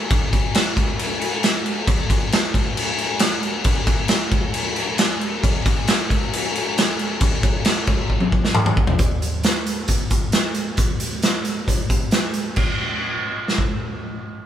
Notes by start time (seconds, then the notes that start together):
0.10 kick, crash
0.33 kick, crash
0.55 snare, crash
0.77 kick, crash
0.99 crash
1.21 crash
1.43 snare, crash
1.66 crash
1.87 kick, crash
2.10 kick, crash
2.32 snare, crash
2.54 kick, crash
2.77 crash
2.98 crash
3.19 snare, crash
3.43 crash
3.64 kick, crash
3.87 kick, crash
4.08 snare, crash
4.31 kick, crash
4.54 crash
4.76 crash
4.98 snare, crash
5.21 crash
5.44 kick, crash
5.66 kick, crash
5.87 snare, crash
6.10 kick, crash
6.33 crash
6.55 crash
6.78 snare, crash
6.99 crash
7.21 kick, crash
7.43 kick, crash
7.65 snare, crash
7.87 kick, crash
8.10 kick
8.20 high tom
8.32 kick
8.45 snare
8.55 mid tom
8.66 mid tom
8.77 kick
8.87 floor tom
8.99 kick, closed hi-hat
9.22 closed hi-hat
9.44 snare, closed hi-hat
9.67 closed hi-hat
9.88 kick, closed hi-hat
10.11 kick, closed hi-hat
10.32 snare, closed hi-hat
10.54 closed hi-hat
10.77 kick, closed hi-hat
11.00 closed hi-hat
11.22 snare, closed hi-hat
11.45 closed hi-hat
11.68 kick, closed hi-hat
11.90 kick, closed hi-hat
12.11 snare, closed hi-hat
12.34 closed hi-hat
12.56 kick, crash
13.48 snare
13.58 kick